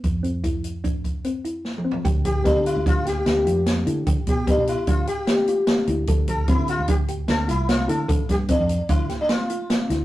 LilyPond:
<<
  \new Staff \with { instrumentName = "Sitar" } { \time 5/4 \key g \mixolydian \tempo 4 = 149 r1 r4 | r8 g'8 d'8 e'8 f'8 g'4. r4 | r8 g'8 d'8 e'8 f'8 g'4. r4 | r8 a'8 e'8 f'8 g'8 r8 a'8 e'8 f'8 a'8 |
r8 g'8 d'4 e'8. d'16 f'4. r8 | }
  \new Staff \with { instrumentName = "Synth arpeggio sound" } { \time 5/4 \key g \mixolydian r8 c'8 e'4 d'4 c'8 e'4 c'8 | g'4 b4 d'8 g'4 f'4 e'8 | g'4 b4 d'8 g'4 f'4 e'8 | a'4 c'4 d'8 g'4 f'4 e'8 |
a'4 c'4 d'8 g'4 f'4 e'8 | }
  \new Staff \with { instrumentName = "Fingered electric bass" } { \clef bass \time 5/4 \key g \mixolydian f,1~ f,4 | d,4 d,16 d8 d,4~ d,16 d,8 f,4 d8 | d16 r16 b,8 r16 b,8 r16 d,8 r2 d,8 | d,4 d,16 d8 d,4~ d,16 d,8 c,4 d8 |
d16 r16 g,8 r16 f,8 r16 d,8 r2 d,8 | }
  \new DrumStaff \with { instrumentName = "Drums" } \drummode { \time 5/4 <hh bd>8 hh8 <hh bd>8 hh8 <hh bd>8 <hh bd>8 hh8 hh8 \tuplet 3/2 { sn8 toml8 tomfh8 } | <hh bd>8 <hh bd>8 <hh bd sn>8 hh8 <hh bd>8 <hh sn>8 <hh sn>8 hh8 <hh sn>8 hh8 | <hh bd>8 <hh bd>8 <hh bd>8 hh8 <hh bd>8 hh8 <hh sn>8 hh8 <hh sn>8 hh8 | <hh bd>8 <hh bd>8 <hh bd>8 hh8 <hh bd>8 hh8 <hh sn>8 hh8 <hh sn>8 hh8 |
<hh bd>8 <hh bd sn>8 <hh bd>8 hh8 <hh bd>8 <hh sn>8 <hh sn>8 hh8 <hh sn>8 <hh sn>8 | }
>>